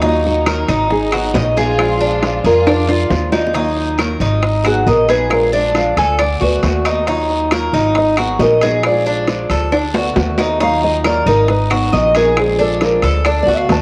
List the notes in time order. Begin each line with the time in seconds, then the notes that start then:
Already playing: D#2
0.02 D#3 F#3 A#3 D#4 F4 F#4, high bongo, high timbale, long guiro
0.24 D#4 F#4, high bongo
0.46 D#3 F#3 A#3 A#4, high bongo, high timbale, low timbale, short guiro, claves
0.68 G#1 D#4, high bongo, high timbale, short guiro
0.90 D#4 G#4, muted steel-string acoustic guitar stroke, high bongo, long guiro
1.12 F#3 B3 D#4 F#4 G#4, high timbale, claves
1.34 A#1 F#3 B3 D#4 G#4 D#5, high bongo, low bongo, low timbale, short guiro
1.56 F#3 B3 D#4 F4 G#4, high bongo, short guiro
1.78 F3 G#3 D4 F4, high bongo, high timbale, long guiro, claves
2.01 D4, high bongo
2.22 F3 G#3 D4 F4, high bongo, high timbale, low timbale, short guiro
2.44 F2 F4 G#4 A#4, short guiro
2.66 D4, muted steel-string acoustic guitar stroke, high bongo, high timbale, long guiro, claves
2.87 G#3 D4 F4, high bongo, high timbale
3.10 D#2 F3 G#3 D4 F4, high bongo, low bongo, low timbale, short guiro
3.32 G#3 D4 D#4 F4, high bongo, low timbale, short guiro, claves
3.47 low bongo
3.54 D#3 F#3 A#3 D#4 F4, high bongo, high timbale, long guiro
3.77 high bongo
3.98 D#3 F#3 A#3 F4 A#4, high bongo, high timbale, short guiro, claves
4.20 G#1 D#4, high bongo, short guiro
4.42 muted steel-string acoustic guitar stroke, high bongo, high timbale, long guiro
4.64 F#3 B3 D#4 F#4 G#4, high bongo, high timbale, claves
4.87 A#1 F#3 B3 D#4 G#4 A#4 D#5, high bongo, low bongo, short guiro
5.08 F#3 B3 D#4 G#4 B4, high timbale, short guiro
5.30 F3 G#3 D4 F4 A#4, high bongo, high timbale, long guiro, claves
5.53 D4 D5, high bongo
5.74 F3 G#3 D4 F4 F5, high bongo, high timbale, short guiro
5.96 D2 A4 G#5, high bongo, high timbale, short guiro
6.19 D4 F#5, muted steel-string acoustic guitar stroke, high bongo, high timbale, long guiro, claves
6.40 D2 A3 B3 F#4 B4, high bongo
6.62 D#2 D3 A3 B3 F#4, high bongo, low bongo, high timbale, low timbale, short guiro
6.85 A3 B3 D#4 F#4, high timbale, short guiro, claves
7.06 D#3 F#3 A#3 D#4 F4, high bongo, high timbale, long guiro
7.30 high bongo
7.51 D#3 F#3 A#3 F4 A#4, high bongo, high timbale, short guiro, claves
7.73 G#1 D#4, high bongo, short guiro
7.95 D#5, muted steel-string acoustic guitar stroke, high bongo, high timbale, long guiro
8.17 F#3 B3 D#4 F#4 G#4, high bongo, high timbale, claves
8.39 A#1 F#3 B3 D#4 G#4 A#4 D#5, high bongo, low bongo, low timbale, short guiro
8.61 F#3 B3 D#4 G#4 D#5, high timbale, short guiro
8.83 F3 G#3 D4 F4 D5, high bongo, high timbale, long guiro, claves
9.06 D4, high bongo
9.28 F3 G#3 D4 F4, high bongo, high timbale, short guiro
9.50 D2 A4, high bongo, high timbale, short guiro
9.72 D4, muted steel-string acoustic guitar stroke, high bongo, high timbale, long guiro, claves
9.94 A3 B3 F#4, high bongo, low timbale
10.16 D#2 D3 A3 B3 F#4, high bongo, low bongo, low timbale, short guiro
10.38 A3 B3 D#4 F#4, low timbale, short guiro, claves
10.60 D#3 F#3 A#3 D#4 F4 F5, high bongo, high timbale, long guiro
10.83 D#5, high bongo
11.04 D#3 F#3 A#3 F4 A#4 D5, high bongo, high timbale, short guiro, claves
11.26 G#1 D#4 A#4, high bongo, short guiro
11.48 B4, muted steel-string acoustic guitar stroke, high bongo, high timbale, long guiro
11.70 F#3 B3 D#4 F#4 G#4, high bongo, high timbale, claves
11.92 A#1 F#3 B3 D#4 F#4 G#4 D#5, high bongo, low bongo, short guiro
12.14 F#3 B3 D#4 G#4 A#4, high timbale, short guiro
12.36 F3 G#3 D4 F4 G#4, high bongo, high timbale, long guiro, claves
12.59 D4 A4, high bongo
12.81 F3 G#3 D4 F4 A#4, high bongo, high timbale, short guiro
13.02 D2 A4 B4, high bongo, high timbale, short guiro
13.25 D4 A4, muted steel-string acoustic guitar stroke, high bongo, high timbale, long guiro, claves
13.43 F#4 D5
13.47 D2 A3 B3 F#4, high bongo
13.57 F5
13.69 D#2 D3 A3 B3 F#4 A5, high bongo, low bongo, high timbale, low timbale, short guiro